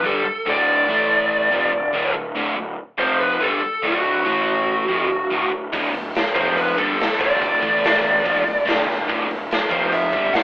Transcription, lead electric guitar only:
0.06 0.49 A4 medium
0.50 2.12 D5 medium
2.99 3.20 C5 medium
3.21 3.40 B4 medium
3.43 3.85 A4 medium
3.87 5.49 F#4 medium
6.36 6.57 C5 medium
6.57 6.78 B4 medium
6.79 7.21 A4 medium
7.21 8.83 D5 loud
9.72 9.91 C5 medium
9.93 10.31 E5 medium
10.33 10.43 F#5 medium

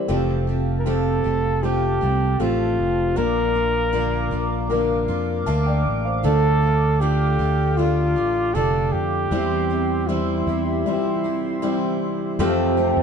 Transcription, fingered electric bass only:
0.09 1.20 F1 medium
1.25 1.97 F1 medium
2.02 2.37 C2 medium
2.40 2.76 A1 medium
2.79 3.14 F1 medium
3.17 4.28 A#1 medium
4.32 5.05 A#1 medium
5.08 5.44 F2 medium
5.47 5.83 D2 medium
5.86 6.22 A1 medium
6.24 7.36 D2 medium
7.39 8.16 D2 medium
8.16 8.52 A1 medium
8.55 8.91 F1 medium
8.93 9.29 F2 medium
9.31 10.43 E2 medium
10.47 10.83 E2 medium
12.39 12.93 F2 loud
12.97 13.03 F2 medium

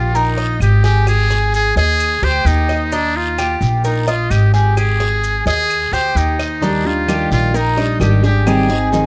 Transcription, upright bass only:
0.00 0.57 A#1 medium
0.60 1.70 G#1 medium
1.76 2.19 D#2 medium
2.22 2.44 D2 medium
2.45 3.54 D#2 medium
3.61 4.26 A#1 medium
4.30 5.40 G#1 medium
5.46 5.89 D#2 loud
5.92 6.13 D2 medium
6.15 7.25 D#2 medium
7.31 7.96 A#1 medium
8.00 9.06 G#1 medium

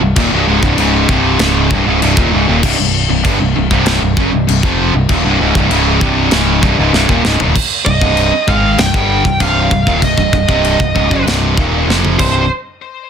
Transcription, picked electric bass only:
0.01 0.15 C1 medium
0.16 0.31 D#1 loud
0.32 0.46 C1 medium
0.47 0.62 C#1 medium
0.63 0.76 C1 medium
0.76 1.06 C#1 medium
1.09 1.38 C1 medium
1.39 1.68 C#1 loud
1.71 1.85 C1 medium
1.86 2.00 C#1 loud
2.02 2.16 C1 loud
2.17 2.31 D#1 medium
2.34 2.47 C#1 loud
2.48 2.62 D#1 medium
2.64 2.77 C1 loud
2.79 3.07 C1 medium
3.10 3.24 C1 medium
3.25 3.39 G1 loud
3.41 3.55 C1 medium
3.56 3.70 C1 medium
3.71 3.99 C1 medium
4.02 4.16 C1 medium
4.17 4.31 F#1 medium
4.32 4.46 C1 medium
4.49 4.62 C1 medium
4.63 4.91 F1 medium
4.94 5.08 C1 medium
5.09 5.23 D#1 medium
5.24 5.38 C1 loud
5.41 5.54 C#1 medium
5.55 5.69 C1 medium
5.69 5.98 C#1 loud
6.02 6.30 C1 medium
6.33 6.61 C#1 medium
6.63 6.77 C1 medium
6.79 6.92 C#1 medium
6.93 7.08 C1 medium
7.09 7.23 D#1 medium
7.25 7.39 C#1 medium
7.40 7.54 D#1 medium
7.86 8.00 C1 medium
8.01 8.30 C1 medium
8.33 muted picked electric bass stroke soft
8.48 8.76 G#1 medium
8.78 8.93 C1 medium
8.94 9.23 G1 medium
9.25 9.39 C1 medium
9.41 9.69 C1 medium
9.71 9.86 C1 medium
9.87 10.01 D#1 medium
10.02 10.16 C1 medium
10.18 10.32 C1 medium
10.33 10.47 C1 medium
10.48 10.77 C1 medium
10.80 10.94 C1 medium
10.96 11.10 C#1 medium
11.11 11.24 F#1 medium
11.25 11.54 C1 medium
11.57 11.86 D#1 medium
11.87 12.16 F1 medium
12.19 12.48 C1 medium

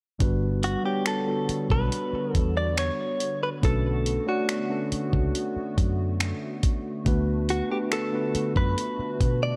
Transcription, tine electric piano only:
0.19 0.78 G3 medium
0.19 0.78 B3 medium
0.19 0.78 D4 medium
0.19 0.79 F#4 medium
0.19 0.79 B4 medium
0.83 1.23 G3 medium
0.83 1.23 B3 medium
0.83 1.23 D4 medium
0.83 1.24 F#4 medium
0.83 1.24 C#5 medium
1.26 2.82 G3 medium
1.26 2.82 B3 medium
1.26 2.82 D4 medium
1.26 2.83 F#4 medium
1.26 2.83 A4 medium
3.62 4.21 A3 medium
3.62 4.21 C#4 medium
3.62 4.21 D4 medium
3.62 4.22 F#4 medium
3.62 4.22 B4 medium
4.26 4.66 A3 medium
4.26 4.66 D4 medium
4.26 4.67 F#4 medium
4.26 4.66 C#5 medium
4.26 4.67 D5 medium
4.69 6.24 A3 medium
4.69 6.25 C#4 medium
4.69 6.25 D4 medium
4.69 6.25 F#4 medium
4.69 6.26 A4 medium
7.05 7.64 A3 medium
7.05 7.64 B3 medium
7.05 7.64 D4 medium
7.05 7.65 F#4 medium
7.05 7.65 B4 medium
7.69 8.08 A3 medium
7.69 8.09 B3 medium
7.69 8.09 D4 medium
7.69 8.09 F#4 medium
7.69 8.10 B4 medium
8.12 9.56 A3 medium
8.12 9.56 B3 medium
8.12 9.56 D4 medium
8.12 8.20 F4 medium
8.12 9.56 B4 medium
8.21 9.56 F#4 medium

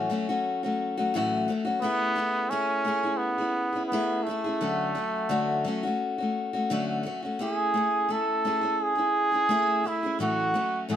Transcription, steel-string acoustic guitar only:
0.10 0.26 F#3 medium
0.10 0.27 A3 medium
0.10 0.28 C#4 medium
0.10 0.28 F#4 medium
0.29 0.64 F#3 soft
0.29 0.63 A3 medium
0.29 0.63 C#4 medium
0.29 0.62 F#4 medium
0.63 0.98 F#3 soft
0.63 0.98 A3 soft
0.63 0.97 C#4 medium
0.63 0.96 F#4 medium
0.97 1.15 F#3 medium
0.97 1.15 A3 medium
0.97 1.14 C#4 medium
0.97 1.14 F#4 medium
1.14 1.48 A2 loud
1.14 1.49 E3 loud
1.14 1.47 F#3 medium
1.14 1.48 A3 loud
1.14 1.49 C#4 medium
1.14 1.50 F#4 loud
1.48 1.65 F#3 medium
1.48 1.66 A3 medium
1.48 1.65 C#4 medium
1.48 1.63 F#4 medium
1.65 1.82 F#3 soft
1.65 1.81 A3 soft
1.65 1.82 C#4 medium
1.65 1.82 F#4 medium
1.82 2.14 A3 medium
1.82 2.15 C#4 medium
1.82 2.17 E4 medium
1.82 2.18 G#4 medium
2.15 2.49 A3 medium
2.15 2.51 C#4 medium
2.15 2.51 E4 medium
2.15 2.52 G#4 medium
2.51 2.83 A3 medium
2.51 2.84 C#4 medium
2.51 2.86 E4 medium
2.51 2.87 G#4 medium
2.85 3.03 A3 medium
2.85 3.04 C#4 medium
2.85 3.04 E4 medium
2.85 3.02 G#4 medium
3.03 3.40 C#4 soft
3.03 3.39 E4 soft
3.03 3.37 G#4 medium
3.38 3.75 C#4 soft
3.38 3.74 E4 soft
3.38 3.71 G#4 soft
3.73 3.92 C#4 soft
3.73 3.92 E4 soft
3.73 3.91 G#4 soft
3.92 4.25 A3 medium
3.92 4.27 C#4 medium
3.92 4.27 E4 loud
3.92 4.28 G#4 medium
4.27 4.44 A3 medium
4.27 4.45 C#4 medium
4.27 4.45 E4 medium
4.31 4.43 G#4 medium
4.44 4.62 E4 medium
4.44 4.61 G#4 medium
4.49 4.61 C#4 soft
4.61 4.96 D3 medium
4.61 4.94 F#3 medium
4.61 4.94 A3 medium
4.61 4.96 C#4 medium
4.61 4.97 F#4 medium
4.95 5.28 F#3 medium
4.95 5.29 A3 medium
4.95 5.29 C#4 medium
4.95 5.30 F#4 medium
5.29 5.65 D3 medium
5.29 5.63 F#3 medium
5.29 5.65 A3 medium
5.29 5.66 C#4 medium
5.29 5.66 F#4 medium
5.65 5.83 F#3 medium
5.65 5.83 A3 medium
5.65 5.83 C#4 medium
5.65 5.82 F#4 medium
5.83 6.20 A3 soft
5.83 6.19 C#4 medium
5.83 6.17 F#4 medium
6.18 6.53 C#4 medium
6.18 6.52 F#4 soft
6.22 6.55 A3 soft
6.53 6.70 A3 soft
6.53 6.71 C#4 medium
6.53 6.70 F#4 medium
6.70 7.05 D3 loud
6.70 7.02 F#3 medium
6.70 7.04 A3 loud
6.70 7.05 C#4 medium
6.70 7.05 F#4 loud
7.03 7.22 F#3 medium
7.03 7.23 A3 medium
7.03 7.23 C#4 medium
7.03 7.21 F#4 medium
7.22 7.38 A3 soft
7.22 7.39 C#4 soft
7.22 7.40 F#4 medium
7.39 7.73 A3 medium
7.39 7.74 C#4 medium
7.39 7.75 E4 medium
7.39 7.76 G#4 medium
7.74 8.07 A3 medium
7.74 8.09 C#4 medium
7.74 8.10 E4 medium
7.74 8.11 G#4 medium
8.09 8.43 A3 medium
8.09 8.44 C#4 medium
8.09 8.45 E4 medium
8.45 8.62 A3 medium
8.45 8.62 C#4 medium
8.45 8.62 E4 medium
8.45 8.60 G#4 medium
8.61 8.98 C#4 soft
8.61 8.97 E4 medium
8.61 8.94 G#4 medium
8.95 9.33 C#4 soft
8.95 9.32 E4 soft
8.95 9.31 G#4 medium
9.32 9.49 C#4 soft
9.32 9.50 E4 soft
9.32 9.49 G#4 soft
9.49 9.83 A3 medium
9.49 9.84 C#4 medium
9.49 9.85 E4 medium
9.49 9.85 G#4 medium
9.84 10.01 A3 medium
9.84 10.02 C#4 medium
9.84 10.03 E4 medium
9.84 10.02 G#4 medium
10.03 10.20 C#4 soft
10.03 10.20 E4 soft
10.03 10.19 G#4 medium
10.19 10.53 A2 medium
10.19 10.54 E3 medium
10.19 10.53 F#3 medium
10.19 10.54 A3 medium
10.19 10.54 C#4 medium
10.19 10.55 F#4 medium
10.54 10.88 F#3 medium
10.54 10.88 A3 medium
10.54 10.89 C#4 medium
10.54 10.89 F#4 medium
10.89 10.96 A2 medium
10.89 10.96 E3 medium
10.89 10.96 F#3 medium
10.89 10.96 A3 medium
10.89 10.96 C#4 medium
10.89 10.96 F#4 medium

